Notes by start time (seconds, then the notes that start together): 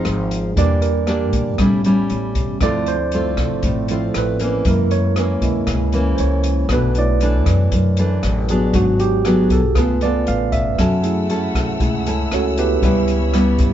Already playing: G#2 F3 C4 D#4 F4 G#4
0.05 G#1, cross-stick, closed hi-hat
0.31 closed hi-hat
0.56 E2 E3 G3 A#3 D4 G4 D5, kick, closed hi-hat
0.82 A#4, closed hi-hat
1.07 A#3 D4 G4, cross-stick, closed hi-hat
1.33 A#2, kick, closed hi-hat
1.58 A1 A2 G3 B3 C#4 E4, kick, cross-stick, closed hi-hat
1.84 G3 C#4 E4, closed hi-hat
2.10 A1, closed hi-hat
2.35 kick, closed hi-hat
2.61 D2 D3 F3 A3 C4 E4 F4 D5, kick, cross-stick, closed hi-hat
2.86 C5, closed hi-hat
3.12 A3 C4 F4, closed hi-hat
3.37 A1, kick, cross-stick, closed hi-hat
3.63 A1 A2, kick, closed hi-hat
3.88 F3 A3 C4 E4 F4, closed hi-hat
4.14 A1 B4, cross-stick, closed hi-hat
4.39 E3 A#3 C#4, closed hi-hat
4.65 F#2 G#3 A#3 E4 A#4, kick, closed hi-hat
4.91 C#5, closed hi-hat
5.16 E3 A#3 C#4, cross-stick, closed hi-hat
5.41 C#2 G#3 A#3 E4, kick, closed hi-hat
5.66 C#2 C#3, kick, cross-stick, closed hi-hat
5.92 E3 A#3 C#4, closed hi-hat
6.15 C#2 C5, closed hi-hat
6.20 C#5
6.43 closed hi-hat
6.69 B1 B2 E3 A3 D4 B4, kick, cross-stick, closed hi-hat
6.95 A3 D4 E4 C#5 D5, closed hi-hat
7.20 E3 A3 D4, closed hi-hat
7.46 F#2, kick, cross-stick, closed hi-hat
7.72 F#2, kick, closed hi-hat
7.97 E3 A3 D4, closed hi-hat
8.23 A1, cross-stick, closed hi-hat
8.49 F#3 B3 D4 G#4, closed hi-hat
8.74 G#1 G#2 B3 D4 F#4, kick, closed hi-hat
9.00 G4, closed hi-hat
9.25 F#3 B3 D4 G#4, cross-stick, closed hi-hat
9.50 B1 A4, kick, closed hi-hat
9.75 C#2 C#3 A3 B3 F4 A4 B4, kick, cross-stick, closed hi-hat
10.01 B3 F4 A4 D5, closed hi-hat
10.27 A1 F5, closed hi-hat
10.52 E5, kick, closed hi-hat
10.77 F#2 F#3 A3 C#4 E4 A4 F#5 E6, kick, cross-stick, closed hi-hat
11.03 A3 E4 G#4, closed hi-hat
11.30 C#4 E4 A4, closed hi-hat
11.55 C#2, kick, cross-stick, closed hi-hat
11.80 C#2 C#3 G#3 A3 E4, kick, closed hi-hat
12.06 C#4 E4 A4, closed hi-hat
12.31 C#2 C#4 F#4 A4 C#5, cross-stick, closed hi-hat
12.57 B3 E4 G4 B4, closed hi-hat
12.82 C#2 C#3 G3 B3 E4 C#5 B5, kick, closed hi-hat
13.08 closed hi-hat
13.33 G3 B3 E4, cross-stick, closed hi-hat
13.59 G2, kick, closed hi-hat